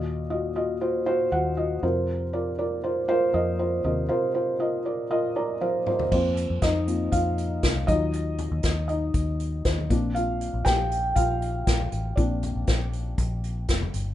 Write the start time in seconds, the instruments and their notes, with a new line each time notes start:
Already playing: fingered electric bass D#2, felt piano A#2 F4 F#4 D#5
0.30 felt piano F4 F#4 D#5
0.55 felt piano F4 F#4 D#5
0.81 felt piano F4 F#4 C5
1.06 felt piano F4 F#4 C5
1.31 fingered electric bass D#2, felt piano F4 F#4 F#5
1.57 felt piano F4 F#4 D#5
1.83 fingered electric bass F2, felt piano C3 F4 A#4 C5
2.33 felt piano F4 A#4 D5
2.58 felt piano F4 A#4 D5
2.83 felt piano F4 A#4 C5
3.08 felt piano F4 A#4 C5
3.33 fingered electric bass F2, felt piano F4 A#4 D#5
3.59 felt piano F4 A#4 C5
3.84 fingered electric bass D#2, felt piano C3 F4 A#4 D#5
4.09 felt piano F4 A#4 C5
4.34 felt piano F4 A#4 C5
4.59 felt piano F4 A#4 D#5
4.85 felt piano F4 A#4 D5
5.10 felt piano F4 A#4 D#5
5.36 felt piano F4 A#4 D5 A#5
5.61 felt piano F4 A#4 C5 F5, high tom
5.86 felt piano F4 A#4 C5, mid tom
5.99 floor tom
6.12 fingered electric bass F2, felt piano A#3 C4 F4 C5, kick, crash
6.37 closed hi-hat
6.50 fingered electric bass F2
6.62 fingered electric bass F2, felt piano D#4 D#5, kick, snare, closed hi-hat
6.87 felt piano A#3 C4 F4, closed hi-hat
7.12 fingered electric bass F2, felt piano F4 F5, kick, closed hi-hat
7.38 closed hi-hat
7.63 fingered electric bass C2, kick, snare, closed hi-hat
7.76 floor tom
7.87 fingered electric bass D#2, felt piano F#3 D#4 F4 D#5, kick, closed hi-hat
8.13 closed hi-hat
8.38 closed hi-hat, floor tom
8.52 fingered electric bass D#2
8.63 fingered electric bass D#2, kick, snare, closed hi-hat
8.88 felt piano D#4 D#5, closed hi-hat
9.14 fingered electric bass D#2, kick, closed hi-hat
9.40 closed hi-hat
9.65 fingered electric bass D#2, kick, snare, closed hi-hat
9.78 floor tom
9.90 fingered electric bass A#1, felt piano A#3 C4 D4, kick, closed hi-hat
10.15 felt piano F4 F5, closed hi-hat
10.41 closed hi-hat
10.54 fingered electric bass A#1
10.65 fingered electric bass A#1, felt piano G4 G5, kick, snare, closed hi-hat
10.92 closed hi-hat
11.16 fingered electric bass A#1, felt piano F4 F5, kick, closed hi-hat
11.42 closed hi-hat
11.67 fingered electric bass A#1, kick, snare, closed hi-hat
11.80 floor tom
11.92 fingered electric bass A1, closed hi-hat
12.16 fingered electric bass A#1, felt piano A#3 C4 D4 D5, kick, closed hi-hat
12.43 closed hi-hat, floor tom
12.55 fingered electric bass A#1
12.67 fingered electric bass A#1, kick, snare, closed hi-hat
12.93 closed hi-hat
13.18 fingered electric bass A#1, kick, closed hi-hat
13.44 closed hi-hat
13.68 fingered electric bass F1, kick, snare, closed hi-hat
13.81 floor tom
13.94 fingered electric bass G1, closed hi-hat